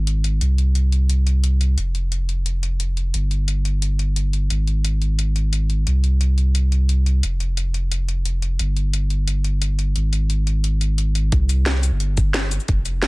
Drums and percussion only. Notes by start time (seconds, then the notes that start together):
0.07 closed hi-hat
0.24 closed hi-hat
0.41 closed hi-hat
0.58 closed hi-hat
0.75 closed hi-hat
0.92 closed hi-hat
1.09 closed hi-hat
1.27 closed hi-hat
1.44 closed hi-hat
1.61 closed hi-hat
1.78 closed hi-hat
1.95 closed hi-hat
2.12 closed hi-hat
2.29 closed hi-hat
2.46 closed hi-hat
2.63 closed hi-hat
2.80 closed hi-hat
2.97 closed hi-hat
3.14 closed hi-hat
3.31 closed hi-hat
3.48 closed hi-hat
3.65 closed hi-hat
3.82 closed hi-hat
3.99 closed hi-hat
4.16 closed hi-hat
4.33 closed hi-hat
4.50 closed hi-hat
4.67 closed hi-hat
4.84 closed hi-hat
5.02 closed hi-hat
5.19 closed hi-hat
5.36 closed hi-hat
5.53 closed hi-hat
5.70 closed hi-hat
5.87 closed hi-hat
6.04 closed hi-hat
6.21 closed hi-hat
6.38 closed hi-hat
6.55 closed hi-hat
6.72 closed hi-hat
6.89 closed hi-hat
7.06 closed hi-hat
7.23 closed hi-hat
7.40 closed hi-hat
7.57 closed hi-hat
7.74 closed hi-hat
7.92 closed hi-hat
8.08 closed hi-hat
8.25 closed hi-hat
8.42 closed hi-hat
8.59 closed hi-hat
8.76 closed hi-hat
8.93 closed hi-hat
9.10 closed hi-hat
9.27 closed hi-hat
9.44 closed hi-hat
9.62 closed hi-hat
9.79 closed hi-hat
9.96 closed hi-hat
10.13 closed hi-hat
10.30 closed hi-hat
10.47 closed hi-hat
10.64 closed hi-hat
10.81 closed hi-hat
10.98 closed hi-hat
11.15 closed hi-hat
11.32 kick, closed hi-hat
11.49 closed hi-hat, cabasa
11.66 snare, closed hi-hat
11.83 closed hi-hat, cabasa
12.00 closed hi-hat
12.17 kick, closed hi-hat, cabasa
12.34 snare, closed hi-hat
12.51 closed hi-hat, cabasa
12.60 cabasa
12.68 kick, closed hi-hat
12.85 closed hi-hat, cabasa
13.02 snare, closed hi-hat